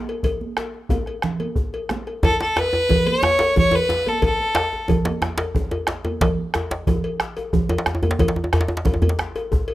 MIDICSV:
0, 0, Header, 1, 5, 480
1, 0, Start_track
1, 0, Key_signature, 3, "major"
1, 0, Tempo, 331309
1, 343, Time_signature, 12, 3, 24, 8
1, 14113, End_track
2, 0, Start_track
2, 0, Title_t, "Fiddle"
2, 0, Program_c, 0, 110
2, 3246, Note_on_c, 0, 69, 102
2, 3465, Note_off_c, 0, 69, 0
2, 3489, Note_on_c, 0, 69, 93
2, 3747, Note_on_c, 0, 71, 110
2, 3768, Note_off_c, 0, 69, 0
2, 4442, Note_on_c, 0, 73, 105
2, 4464, Note_off_c, 0, 71, 0
2, 5162, Note_off_c, 0, 73, 0
2, 5185, Note_on_c, 0, 73, 104
2, 5437, Note_on_c, 0, 71, 100
2, 5459, Note_off_c, 0, 73, 0
2, 5914, Note_on_c, 0, 69, 93
2, 5935, Note_off_c, 0, 71, 0
2, 6138, Note_off_c, 0, 69, 0
2, 6164, Note_on_c, 0, 69, 85
2, 7045, Note_off_c, 0, 69, 0
2, 14113, End_track
3, 0, Start_track
3, 0, Title_t, "Bombo"
3, 335, Note_on_c, 9, 43, 94
3, 479, Note_off_c, 9, 43, 0
3, 822, Note_on_c, 9, 37, 107
3, 967, Note_off_c, 9, 37, 0
3, 1293, Note_on_c, 9, 43, 103
3, 1438, Note_off_c, 9, 43, 0
3, 1538, Note_on_c, 9, 37, 31
3, 1683, Note_off_c, 9, 37, 0
3, 1773, Note_on_c, 9, 37, 96
3, 1918, Note_off_c, 9, 37, 0
3, 2253, Note_on_c, 9, 43, 106
3, 2398, Note_off_c, 9, 43, 0
3, 2742, Note_on_c, 9, 37, 90
3, 2887, Note_off_c, 9, 37, 0
3, 3005, Note_on_c, 9, 37, 33
3, 3149, Note_off_c, 9, 37, 0
3, 3230, Note_on_c, 9, 43, 120
3, 3375, Note_off_c, 9, 43, 0
3, 3720, Note_on_c, 9, 37, 116
3, 3865, Note_off_c, 9, 37, 0
3, 4214, Note_on_c, 9, 43, 100
3, 4359, Note_off_c, 9, 43, 0
3, 4687, Note_on_c, 9, 37, 108
3, 4832, Note_off_c, 9, 37, 0
3, 5174, Note_on_c, 9, 37, 35
3, 5174, Note_on_c, 9, 43, 106
3, 5318, Note_off_c, 9, 37, 0
3, 5318, Note_off_c, 9, 43, 0
3, 6121, Note_on_c, 9, 43, 96
3, 6266, Note_off_c, 9, 43, 0
3, 6609, Note_on_c, 9, 37, 114
3, 6754, Note_off_c, 9, 37, 0
3, 7085, Note_on_c, 9, 43, 110
3, 7230, Note_off_c, 9, 43, 0
3, 7569, Note_on_c, 9, 37, 107
3, 7714, Note_off_c, 9, 37, 0
3, 8035, Note_on_c, 9, 37, 39
3, 8035, Note_on_c, 9, 43, 113
3, 8180, Note_off_c, 9, 37, 0
3, 8180, Note_off_c, 9, 43, 0
3, 8502, Note_on_c, 9, 37, 109
3, 8647, Note_off_c, 9, 37, 0
3, 8996, Note_on_c, 9, 43, 121
3, 9141, Note_off_c, 9, 43, 0
3, 9472, Note_on_c, 9, 37, 124
3, 9617, Note_off_c, 9, 37, 0
3, 9952, Note_on_c, 9, 43, 115
3, 10097, Note_off_c, 9, 43, 0
3, 10428, Note_on_c, 9, 37, 124
3, 10572, Note_off_c, 9, 37, 0
3, 10909, Note_on_c, 9, 37, 37
3, 10909, Note_on_c, 9, 43, 124
3, 11054, Note_off_c, 9, 37, 0
3, 11054, Note_off_c, 9, 43, 0
3, 11388, Note_on_c, 9, 37, 111
3, 11533, Note_off_c, 9, 37, 0
3, 11864, Note_on_c, 9, 43, 125
3, 12009, Note_off_c, 9, 43, 0
3, 12354, Note_on_c, 9, 37, 127
3, 12499, Note_off_c, 9, 37, 0
3, 12827, Note_on_c, 9, 37, 36
3, 12827, Note_on_c, 9, 43, 110
3, 12972, Note_off_c, 9, 37, 0
3, 12972, Note_off_c, 9, 43, 0
3, 13319, Note_on_c, 9, 37, 111
3, 13464, Note_off_c, 9, 37, 0
3, 13802, Note_on_c, 9, 37, 39
3, 13802, Note_on_c, 9, 43, 113
3, 13947, Note_off_c, 9, 37, 0
3, 13947, Note_off_c, 9, 43, 0
3, 14113, End_track
4, 0, Start_track
4, 0, Title_t, "Djembe"
4, 351, Note_on_c, 9, 64, 68
4, 496, Note_off_c, 9, 64, 0
4, 593, Note_on_c, 9, 62, 22
4, 738, Note_off_c, 9, 62, 0
4, 831, Note_on_c, 9, 62, 75
4, 976, Note_off_c, 9, 62, 0
4, 1074, Note_on_c, 9, 62, 22
4, 1219, Note_off_c, 9, 62, 0
4, 1306, Note_on_c, 9, 62, 24
4, 1306, Note_on_c, 9, 63, 76
4, 1306, Note_on_c, 9, 64, 75
4, 1451, Note_off_c, 9, 62, 0
4, 1451, Note_off_c, 9, 63, 0
4, 1451, Note_off_c, 9, 64, 0
4, 1784, Note_on_c, 9, 62, 73
4, 1929, Note_off_c, 9, 62, 0
4, 2261, Note_on_c, 9, 64, 70
4, 2406, Note_off_c, 9, 64, 0
4, 2506, Note_on_c, 9, 62, 22
4, 2651, Note_off_c, 9, 62, 0
4, 2747, Note_on_c, 9, 62, 70
4, 2747, Note_on_c, 9, 63, 73
4, 2892, Note_off_c, 9, 62, 0
4, 2892, Note_off_c, 9, 63, 0
4, 3228, Note_on_c, 9, 62, 26
4, 3228, Note_on_c, 9, 64, 81
4, 3232, Note_on_c, 9, 63, 120
4, 3373, Note_off_c, 9, 62, 0
4, 3373, Note_off_c, 9, 64, 0
4, 3377, Note_off_c, 9, 63, 0
4, 3484, Note_on_c, 9, 62, 85
4, 3629, Note_off_c, 9, 62, 0
4, 3714, Note_on_c, 9, 63, 88
4, 3721, Note_on_c, 9, 62, 84
4, 3859, Note_off_c, 9, 63, 0
4, 3865, Note_off_c, 9, 62, 0
4, 3955, Note_on_c, 9, 63, 80
4, 3968, Note_off_c, 9, 63, 0
4, 3968, Note_on_c, 9, 63, 61
4, 4113, Note_off_c, 9, 63, 0
4, 4193, Note_on_c, 9, 63, 84
4, 4210, Note_on_c, 9, 64, 88
4, 4338, Note_off_c, 9, 63, 0
4, 4355, Note_off_c, 9, 64, 0
4, 4676, Note_on_c, 9, 63, 114
4, 4678, Note_on_c, 9, 62, 82
4, 4820, Note_off_c, 9, 63, 0
4, 4823, Note_off_c, 9, 62, 0
4, 4910, Note_on_c, 9, 62, 92
4, 4921, Note_on_c, 9, 63, 69
4, 5055, Note_off_c, 9, 62, 0
4, 5066, Note_off_c, 9, 63, 0
4, 5160, Note_on_c, 9, 63, 86
4, 5164, Note_on_c, 9, 64, 87
4, 5304, Note_off_c, 9, 63, 0
4, 5308, Note_off_c, 9, 64, 0
4, 5380, Note_on_c, 9, 63, 91
4, 5410, Note_on_c, 9, 62, 27
4, 5524, Note_off_c, 9, 63, 0
4, 5555, Note_off_c, 9, 62, 0
4, 5638, Note_on_c, 9, 63, 82
4, 5648, Note_on_c, 9, 62, 86
4, 5783, Note_off_c, 9, 63, 0
4, 5793, Note_off_c, 9, 62, 0
4, 5883, Note_on_c, 9, 63, 65
4, 6028, Note_off_c, 9, 63, 0
4, 6116, Note_on_c, 9, 62, 25
4, 6116, Note_on_c, 9, 64, 91
4, 6261, Note_off_c, 9, 62, 0
4, 6261, Note_off_c, 9, 64, 0
4, 6589, Note_on_c, 9, 62, 113
4, 6596, Note_off_c, 9, 62, 0
4, 6596, Note_on_c, 9, 62, 86
4, 6741, Note_off_c, 9, 62, 0
4, 6853, Note_on_c, 9, 63, 65
4, 6998, Note_off_c, 9, 63, 0
4, 7072, Note_on_c, 9, 63, 78
4, 7090, Note_on_c, 9, 64, 86
4, 7217, Note_off_c, 9, 63, 0
4, 7235, Note_off_c, 9, 64, 0
4, 7319, Note_on_c, 9, 62, 90
4, 7464, Note_off_c, 9, 62, 0
4, 7559, Note_on_c, 9, 63, 92
4, 7560, Note_on_c, 9, 62, 84
4, 7704, Note_off_c, 9, 63, 0
4, 7705, Note_off_c, 9, 62, 0
4, 7788, Note_on_c, 9, 62, 111
4, 7810, Note_on_c, 9, 63, 67
4, 7933, Note_off_c, 9, 62, 0
4, 7955, Note_off_c, 9, 63, 0
4, 8054, Note_on_c, 9, 64, 83
4, 8199, Note_off_c, 9, 64, 0
4, 8277, Note_on_c, 9, 63, 91
4, 8283, Note_on_c, 9, 62, 28
4, 8422, Note_off_c, 9, 63, 0
4, 8428, Note_off_c, 9, 62, 0
4, 8512, Note_on_c, 9, 62, 86
4, 8525, Note_off_c, 9, 62, 0
4, 8525, Note_on_c, 9, 62, 84
4, 8670, Note_off_c, 9, 62, 0
4, 8759, Note_on_c, 9, 63, 89
4, 8904, Note_off_c, 9, 63, 0
4, 9000, Note_on_c, 9, 62, 26
4, 9000, Note_on_c, 9, 64, 87
4, 9001, Note_off_c, 9, 62, 0
4, 9001, Note_on_c, 9, 62, 116
4, 9144, Note_off_c, 9, 64, 0
4, 9146, Note_off_c, 9, 62, 0
4, 9481, Note_on_c, 9, 62, 83
4, 9493, Note_on_c, 9, 63, 85
4, 9626, Note_off_c, 9, 62, 0
4, 9638, Note_off_c, 9, 63, 0
4, 9717, Note_on_c, 9, 63, 65
4, 9725, Note_on_c, 9, 62, 90
4, 9862, Note_off_c, 9, 63, 0
4, 9870, Note_off_c, 9, 62, 0
4, 9965, Note_on_c, 9, 63, 78
4, 9965, Note_on_c, 9, 64, 88
4, 10109, Note_off_c, 9, 64, 0
4, 10110, Note_off_c, 9, 63, 0
4, 10437, Note_on_c, 9, 62, 88
4, 10581, Note_off_c, 9, 62, 0
4, 10685, Note_on_c, 9, 63, 67
4, 10830, Note_off_c, 9, 63, 0
4, 10914, Note_on_c, 9, 64, 85
4, 11059, Note_off_c, 9, 64, 0
4, 11148, Note_on_c, 9, 63, 123
4, 11164, Note_on_c, 9, 62, 27
4, 11277, Note_off_c, 9, 62, 0
4, 11277, Note_on_c, 9, 62, 93
4, 11293, Note_off_c, 9, 63, 0
4, 11393, Note_off_c, 9, 62, 0
4, 11393, Note_on_c, 9, 62, 79
4, 11396, Note_on_c, 9, 63, 85
4, 11513, Note_off_c, 9, 63, 0
4, 11513, Note_on_c, 9, 63, 88
4, 11538, Note_off_c, 9, 62, 0
4, 11628, Note_on_c, 9, 64, 89
4, 11637, Note_off_c, 9, 63, 0
4, 11637, Note_on_c, 9, 63, 62
4, 11746, Note_on_c, 9, 62, 95
4, 11773, Note_off_c, 9, 64, 0
4, 11782, Note_off_c, 9, 63, 0
4, 11871, Note_on_c, 9, 63, 103
4, 11877, Note_off_c, 9, 62, 0
4, 11877, Note_on_c, 9, 62, 26
4, 11877, Note_on_c, 9, 64, 80
4, 12000, Note_off_c, 9, 62, 0
4, 12000, Note_on_c, 9, 62, 87
4, 12016, Note_off_c, 9, 63, 0
4, 12022, Note_off_c, 9, 64, 0
4, 12115, Note_on_c, 9, 63, 79
4, 12127, Note_off_c, 9, 62, 0
4, 12127, Note_on_c, 9, 62, 26
4, 12226, Note_off_c, 9, 63, 0
4, 12226, Note_on_c, 9, 63, 89
4, 12272, Note_off_c, 9, 62, 0
4, 12358, Note_on_c, 9, 62, 87
4, 12362, Note_on_c, 9, 64, 85
4, 12371, Note_off_c, 9, 63, 0
4, 12469, Note_off_c, 9, 62, 0
4, 12469, Note_on_c, 9, 62, 84
4, 12507, Note_off_c, 9, 64, 0
4, 12582, Note_on_c, 9, 63, 109
4, 12605, Note_off_c, 9, 63, 0
4, 12605, Note_on_c, 9, 63, 62
4, 12613, Note_off_c, 9, 62, 0
4, 12706, Note_on_c, 9, 62, 84
4, 12750, Note_off_c, 9, 63, 0
4, 12820, Note_on_c, 9, 63, 81
4, 12843, Note_off_c, 9, 62, 0
4, 12843, Note_on_c, 9, 62, 27
4, 12843, Note_on_c, 9, 64, 94
4, 12946, Note_off_c, 9, 63, 0
4, 12946, Note_on_c, 9, 63, 88
4, 12987, Note_off_c, 9, 62, 0
4, 12987, Note_off_c, 9, 64, 0
4, 13066, Note_on_c, 9, 64, 84
4, 13078, Note_on_c, 9, 62, 24
4, 13091, Note_off_c, 9, 63, 0
4, 13173, Note_off_c, 9, 62, 0
4, 13173, Note_on_c, 9, 62, 78
4, 13211, Note_off_c, 9, 64, 0
4, 13310, Note_off_c, 9, 62, 0
4, 13310, Note_on_c, 9, 62, 84
4, 13455, Note_off_c, 9, 62, 0
4, 13554, Note_on_c, 9, 63, 72
4, 13699, Note_off_c, 9, 63, 0
4, 13788, Note_on_c, 9, 64, 92
4, 13933, Note_off_c, 9, 64, 0
4, 14031, Note_on_c, 9, 62, 26
4, 14113, Note_off_c, 9, 62, 0
4, 14113, End_track
5, 0, Start_track
5, 0, Title_t, "Drums"
5, 130, Note_on_c, 9, 56, 49
5, 275, Note_off_c, 9, 56, 0
5, 345, Note_on_c, 9, 63, 19
5, 345, Note_on_c, 9, 64, 57
5, 351, Note_on_c, 9, 56, 65
5, 490, Note_off_c, 9, 63, 0
5, 490, Note_off_c, 9, 64, 0
5, 496, Note_off_c, 9, 56, 0
5, 595, Note_on_c, 9, 63, 48
5, 740, Note_off_c, 9, 63, 0
5, 833, Note_on_c, 9, 56, 44
5, 978, Note_off_c, 9, 56, 0
5, 1317, Note_on_c, 9, 56, 46
5, 1318, Note_on_c, 9, 63, 73
5, 1462, Note_off_c, 9, 56, 0
5, 1463, Note_off_c, 9, 63, 0
5, 1553, Note_on_c, 9, 56, 46
5, 1698, Note_off_c, 9, 56, 0
5, 1795, Note_on_c, 9, 63, 21
5, 1795, Note_on_c, 9, 64, 65
5, 1940, Note_off_c, 9, 63, 0
5, 1940, Note_off_c, 9, 64, 0
5, 2026, Note_on_c, 9, 56, 50
5, 2029, Note_on_c, 9, 63, 54
5, 2171, Note_off_c, 9, 56, 0
5, 2173, Note_off_c, 9, 63, 0
5, 2519, Note_on_c, 9, 56, 48
5, 2663, Note_off_c, 9, 56, 0
5, 2768, Note_on_c, 9, 63, 76
5, 2913, Note_off_c, 9, 63, 0
5, 3000, Note_on_c, 9, 56, 43
5, 3145, Note_off_c, 9, 56, 0
5, 3251, Note_on_c, 9, 56, 70
5, 3257, Note_on_c, 9, 63, 25
5, 3257, Note_on_c, 9, 64, 80
5, 3396, Note_off_c, 9, 56, 0
5, 3402, Note_off_c, 9, 63, 0
5, 3402, Note_off_c, 9, 64, 0
5, 3499, Note_on_c, 9, 63, 27
5, 3644, Note_off_c, 9, 63, 0
5, 3724, Note_on_c, 9, 63, 28
5, 3736, Note_on_c, 9, 56, 54
5, 3868, Note_off_c, 9, 63, 0
5, 3881, Note_off_c, 9, 56, 0
5, 4203, Note_on_c, 9, 64, 85
5, 4218, Note_on_c, 9, 56, 54
5, 4348, Note_off_c, 9, 64, 0
5, 4363, Note_off_c, 9, 56, 0
5, 4442, Note_on_c, 9, 56, 54
5, 4444, Note_on_c, 9, 63, 63
5, 4587, Note_off_c, 9, 56, 0
5, 4588, Note_off_c, 9, 63, 0
5, 4934, Note_on_c, 9, 56, 59
5, 5078, Note_off_c, 9, 56, 0
5, 5175, Note_on_c, 9, 64, 83
5, 5319, Note_off_c, 9, 64, 0
5, 5400, Note_on_c, 9, 56, 62
5, 5545, Note_off_c, 9, 56, 0
5, 5657, Note_on_c, 9, 63, 24
5, 5801, Note_off_c, 9, 63, 0
5, 5887, Note_on_c, 9, 56, 56
5, 5898, Note_on_c, 9, 63, 57
5, 6032, Note_off_c, 9, 56, 0
5, 6043, Note_off_c, 9, 63, 0
5, 6115, Note_on_c, 9, 56, 71
5, 6118, Note_on_c, 9, 63, 21
5, 6118, Note_on_c, 9, 64, 69
5, 6260, Note_off_c, 9, 56, 0
5, 6263, Note_off_c, 9, 63, 0
5, 6263, Note_off_c, 9, 64, 0
5, 6376, Note_on_c, 9, 63, 24
5, 6521, Note_off_c, 9, 63, 0
5, 6596, Note_on_c, 9, 56, 56
5, 6622, Note_on_c, 9, 63, 25
5, 6741, Note_off_c, 9, 56, 0
5, 6767, Note_off_c, 9, 63, 0
5, 7092, Note_on_c, 9, 56, 57
5, 7094, Note_on_c, 9, 64, 82
5, 7237, Note_off_c, 9, 56, 0
5, 7239, Note_off_c, 9, 64, 0
5, 7319, Note_on_c, 9, 56, 54
5, 7321, Note_on_c, 9, 63, 56
5, 7464, Note_off_c, 9, 56, 0
5, 7466, Note_off_c, 9, 63, 0
5, 7799, Note_on_c, 9, 56, 55
5, 7944, Note_off_c, 9, 56, 0
5, 8050, Note_on_c, 9, 64, 74
5, 8195, Note_off_c, 9, 64, 0
5, 8279, Note_on_c, 9, 56, 50
5, 8423, Note_off_c, 9, 56, 0
5, 8529, Note_on_c, 9, 63, 24
5, 8674, Note_off_c, 9, 63, 0
5, 8759, Note_on_c, 9, 56, 51
5, 8777, Note_on_c, 9, 63, 51
5, 8904, Note_off_c, 9, 56, 0
5, 8922, Note_off_c, 9, 63, 0
5, 9009, Note_on_c, 9, 63, 22
5, 9009, Note_on_c, 9, 64, 73
5, 9010, Note_on_c, 9, 56, 64
5, 9154, Note_off_c, 9, 63, 0
5, 9154, Note_off_c, 9, 64, 0
5, 9155, Note_off_c, 9, 56, 0
5, 9252, Note_on_c, 9, 63, 23
5, 9397, Note_off_c, 9, 63, 0
5, 9480, Note_on_c, 9, 56, 51
5, 9494, Note_on_c, 9, 63, 23
5, 9625, Note_off_c, 9, 56, 0
5, 9639, Note_off_c, 9, 63, 0
5, 9956, Note_on_c, 9, 64, 77
5, 9958, Note_on_c, 9, 56, 58
5, 10101, Note_off_c, 9, 64, 0
5, 10103, Note_off_c, 9, 56, 0
5, 10201, Note_on_c, 9, 56, 56
5, 10345, Note_off_c, 9, 56, 0
5, 10672, Note_on_c, 9, 56, 56
5, 10817, Note_off_c, 9, 56, 0
5, 10919, Note_on_c, 9, 64, 80
5, 11064, Note_off_c, 9, 64, 0
5, 11157, Note_on_c, 9, 56, 62
5, 11302, Note_off_c, 9, 56, 0
5, 11409, Note_on_c, 9, 63, 24
5, 11553, Note_off_c, 9, 63, 0
5, 11632, Note_on_c, 9, 56, 60
5, 11643, Note_on_c, 9, 63, 57
5, 11777, Note_off_c, 9, 56, 0
5, 11788, Note_off_c, 9, 63, 0
5, 11878, Note_on_c, 9, 63, 26
5, 11878, Note_on_c, 9, 64, 72
5, 11883, Note_on_c, 9, 56, 71
5, 12022, Note_off_c, 9, 63, 0
5, 12022, Note_off_c, 9, 64, 0
5, 12028, Note_off_c, 9, 56, 0
5, 12364, Note_on_c, 9, 56, 60
5, 12509, Note_off_c, 9, 56, 0
5, 12829, Note_on_c, 9, 64, 82
5, 12841, Note_on_c, 9, 56, 57
5, 12973, Note_off_c, 9, 64, 0
5, 12986, Note_off_c, 9, 56, 0
5, 13069, Note_on_c, 9, 63, 67
5, 13075, Note_on_c, 9, 56, 59
5, 13213, Note_off_c, 9, 63, 0
5, 13220, Note_off_c, 9, 56, 0
5, 13557, Note_on_c, 9, 56, 62
5, 13701, Note_off_c, 9, 56, 0
5, 14021, Note_on_c, 9, 56, 66
5, 14113, Note_off_c, 9, 56, 0
5, 14113, End_track
0, 0, End_of_file